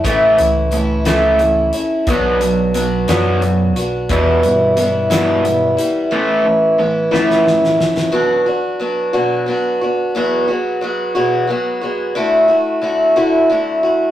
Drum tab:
HH |x-x-x-x-x-x-|x-x-x-x-x-x-|x-x-x-x-x-x-|------------|
SD |------o-----|------o-----|------o-----|------oooooo|
BD |o-----------|o-----------|o-----------|------------|

HH |------------|------------|------------|
SD |------------|------------|------------|
BD |------------|------------|------------|